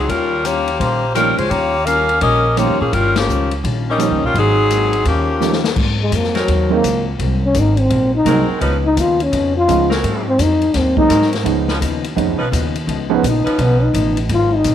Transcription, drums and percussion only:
0.09 kick soft
0.09 ride medium
0.45 hi-hat pedal medium
0.45 ride medium
0.68 ride soft
0.80 kick soft
0.80 ride medium
1.15 cross-stick medium
1.15 hi-hat pedal medium
1.15 ride medium
1.38 ride soft
1.51 kick soft
1.51 ride medium
1.87 hi-hat pedal medium
1.87 ride medium
2.09 ride soft
2.21 kick soft
2.21 ride medium
2.57 cross-stick medium
2.57 hi-hat pedal medium
2.57 ride medium
2.93 kick soft
2.93 ride medium
3.16 snare medium
3.16 ride medium
3.29 hi-hat pedal medium
3.51 ride soft
3.64 kick soft
3.64 ride medium
3.99 cross-stick medium
3.99 hi-hat pedal medium
3.99 ride medium
4.35 kick soft
4.35 ride medium
4.70 hi-hat pedal medium
4.70 ride medium
4.93 ride soft
5.05 kick soft
5.05 ride medium
5.41 snare soft
5.41 hi-hat pedal medium
5.53 snare medium
5.64 snare medium
5.76 kick medium
5.76 crash medium
6.12 kick soft
6.12 hi-hat pedal medium
6.12 ride medium
6.24 snare soft
6.35 snare soft
6.35 ride soft
6.48 kick soft
6.48 ride medium
6.84 kick soft
6.84 hi-hat pedal medium
6.84 ride medium
7.19 kick soft
7.19 ride medium
7.54 kick soft
7.54 hi-hat pedal medium
7.54 ride medium
7.77 ride soft
7.90 kick soft
7.90 ride medium
8.26 kick soft
8.26 hi-hat pedal medium
8.26 ride medium
8.61 kick soft
8.61 ride medium
8.97 kick soft
8.97 hi-hat pedal medium
8.97 ride medium
9.20 ride soft
9.33 kick soft
9.33 ride medium
9.68 kick soft
9.68 hi-hat pedal medium
9.68 ride medium
9.91 snare medium
10.04 kick soft
10.04 ride medium
10.39 kick soft
10.39 hi-hat pedal medium
10.39 ride medium
10.61 ride soft
10.74 kick soft
10.74 snare soft
10.74 ride medium
10.97 kick medium
11.10 kick soft
11.10 hi-hat pedal medium
11.10 ride medium
11.22 snare soft
11.33 snare soft
11.33 ride soft
11.46 kick soft
11.46 ride medium
11.68 snare soft
11.81 kick soft
11.81 hi-hat pedal medium
11.81 ride medium
12.04 ride medium
12.17 kick soft
12.17 ride medium
12.52 kick soft
12.52 hi-hat pedal medium
12.52 ride medium
12.75 ride medium
12.88 kick soft
12.88 ride medium
13.23 kick soft
13.23 hi-hat pedal medium
13.23 ride medium
13.47 ride soft
13.59 kick soft
13.59 ride medium
13.94 kick soft
13.94 hi-hat pedal medium
13.94 ride medium
14.17 ride medium
14.29 kick soft
14.29 ride medium
14.64 kick soft
14.64 hi-hat pedal medium
14.64 ride medium

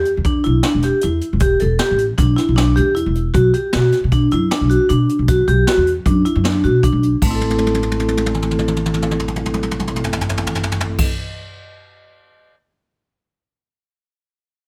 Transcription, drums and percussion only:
0.05 closed hi-hat soft
0.24 kick medium
0.24 closed hi-hat medium
0.44 closed hi-hat medium
0.63 snare medium
0.63 closed hi-hat medium
0.82 snare soft
0.82 closed hi-hat medium
1.01 closed hi-hat medium
1.21 closed hi-hat medium
1.40 kick loud
1.40 closed hi-hat medium
1.59 closed hi-hat medium
1.79 snare medium
1.79 closed hi-hat medium
1.98 closed hi-hat medium
2.18 kick medium
2.18 closed hi-hat medium
2.38 snare soft
2.38 closed hi-hat medium
2.58 snare medium
2.58 closed hi-hat medium
2.77 closed hi-hat medium
2.96 closed hi-hat medium
3.15 closed hi-hat medium
3.34 kick loud
3.34 closed hi-hat medium
3.54 closed hi-hat medium
3.73 snare loud
3.73 closed hi-hat medium
3.92 snare soft
3.92 closed hi-hat medium
4.12 kick medium
4.12 closed hi-hat medium
4.31 closed hi-hat medium
4.51 snare loud
4.51 closed hi-hat medium
4.70 closed hi-hat medium
4.89 closed hi-hat medium
5.09 closed hi-hat medium
5.28 kick loud
5.28 closed hi-hat medium
5.48 closed hi-hat medium
5.67 snare medium
5.67 closed hi-hat medium
5.87 closed hi-hat medium
6.06 kick medium
6.06 closed hi-hat medium
6.25 closed hi-hat medium
6.45 snare loud
6.45 closed hi-hat medium
6.64 closed hi-hat medium
6.83 kick medium
6.83 closed hi-hat medium
7.03 closed hi-hat medium
7.22 kick medium
7.22 crash medium
7.41 high tom soft
7.50 high tom soft
7.58 high tom soft
7.67 high tom soft
7.74 high tom soft
7.83 high tom soft
7.92 high tom soft
8.00 high tom soft
8.08 high tom soft
8.17 high tom soft
8.26 high tom medium
8.34 mid tom medium
8.42 mid tom medium
8.51 mid tom medium
8.59 mid tom medium
8.68 mid tom medium
8.76 mid tom medium
8.86 mid tom medium
8.94 mid tom medium
9.02 mid tom medium
9.11 mid tom medium
9.19 mid tom medium
9.28 mid tom medium
9.36 mid tom medium
9.46 mid tom medium
9.54 mid tom medium
9.63 mid tom medium
9.71 mid tom medium
9.79 mid tom medium
9.87 mid tom medium
9.96 mid tom medium
10.04 floor tom medium
10.13 floor tom medium
10.21 floor tom medium
10.29 floor tom medium
10.37 floor tom medium
10.47 floor tom medium
10.55 floor tom medium
10.63 floor tom medium
10.72 floor tom medium
10.81 floor tom medium
10.99 kick loud
10.99 crash medium

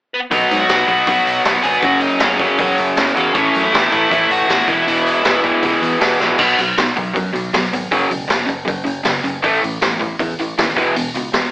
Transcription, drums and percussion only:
0.31 kick medium
0.31 open hi-hat medium
0.51 open hi-hat medium
0.69 snare loud
0.69 open hi-hat medium
0.88 kick medium
0.88 open hi-hat soft
1.07 kick loud
1.07 open hi-hat medium
1.27 open hi-hat medium
1.45 snare loud
1.45 open hi-hat medium
1.63 open hi-hat medium
1.82 kick loud
1.82 open hi-hat medium
2.01 open hi-hat medium
2.20 snare loud
2.20 open hi-hat medium
2.39 kick medium
2.39 open hi-hat soft
2.58 kick medium
2.58 open hi-hat medium
2.78 open hi-hat soft
2.97 snare loud
2.97 open hi-hat medium
3.17 open hi-hat soft
3.35 kick loud
3.35 open hi-hat medium
3.54 open hi-hat soft
3.74 snare loud
3.74 open hi-hat medium
3.92 kick medium
3.92 open hi-hat medium
4.11 kick loud
4.11 open hi-hat medium
4.31 open hi-hat medium
4.50 snare loud
4.50 open hi-hat medium
4.68 kick loud
4.68 open hi-hat medium
4.88 open hi-hat medium
5.06 open hi-hat medium
5.25 snare loud
5.25 open hi-hat medium
5.44 kick medium
5.44 open hi-hat soft
5.63 kick loud
5.63 open hi-hat medium
5.83 open hi-hat medium
6.01 snare loud
6.01 open hi-hat medium
6.21 snare medium
6.39 kick loud
6.39 crash loud
6.59 open hi-hat medium
6.78 snare loud
6.78 open hi-hat medium
6.97 kick medium
6.97 open hi-hat medium
7.16 kick loud
7.16 open hi-hat medium
7.35 open hi-hat medium
7.54 snare loud
7.54 open hi-hat medium
7.73 open hi-hat medium
7.92 kick loud
7.92 open hi-hat medium
8.11 open hi-hat medium
8.30 snare loud
8.30 open hi-hat medium
8.49 kick medium
8.49 open hi-hat medium
8.68 kick loud
8.68 open hi-hat medium
8.86 open hi-hat medium
9.05 snare loud
9.05 open hi-hat medium
9.25 open hi-hat medium
9.44 kick loud
9.44 open hi-hat medium
9.64 open hi-hat medium
9.82 snare loud
9.82 open hi-hat medium
10.01 kick medium
10.01 open hi-hat medium
10.19 kick loud
10.19 open hi-hat medium
10.39 open hi-hat medium
10.58 snare loud
10.58 open hi-hat medium
10.77 kick loud
10.77 open hi-hat medium
10.96 open hi-hat medium
11.15 open hi-hat medium
11.33 snare loud
11.33 open hi-hat medium

